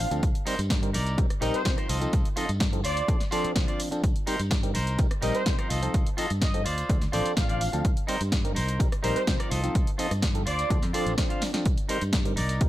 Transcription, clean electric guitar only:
0.10 muted clean electric guitar stroke
0.46 D#4 A#4 C5
0.70 muted clean electric guitar stroke
0.93 D#4 A#4 D5
1.41 D#4 A#4 D#5
1.77 D#4 A#4 C5
1.88 F4 A4 D#5
2.36 F4 A4 D#5
2.60 muted clean electric guitar stroke
2.84 F4 C5 D5
3.31 F4 C5 D5
3.67 F4 C5 D5
3.91 muted clean electric guitar stroke
4.27 D#4 A#4 C5
4.50 muted clean electric guitar stroke
4.74 D#4 A#4 C5
5.22 D#4 A#4 D#5
5.58 D#4 A#4 C5
5.69 F4 A4 D#5
6.17 F4 A4 D#5
6.41 muted clean electric guitar stroke
6.65 F4 C5 D5
7.12 F4 C5 D5
7.48 F4 C5 D5
7.72 muted clean electric guitar stroke
8.07 D#4 A#4 C5
8.31 muted clean electric guitar stroke
8.55 D#4 A#4 C5
9.03 D#4 A#4 C5
9.39 D#4 A#4 D5
9.50 F4 A4 D#5
9.98 F4 A4 D#5
10.22 muted clean electric guitar stroke
10.46 F4 C5 D5
10.93 F4 C5 D5
11.29 F4 C5 F5
11.53 muted clean electric guitar stroke
11.89 D#4 A#4 C5
12.36 D#4 A#4 D5

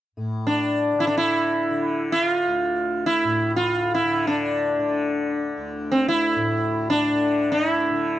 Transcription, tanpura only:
0.17 A2
0.94 D3
1.70 D3
2.47 D2
3.24 A2
4.03 D3
4.79 D3
5.58 D2
6.36 A2
7.12 D3
7.91 D3

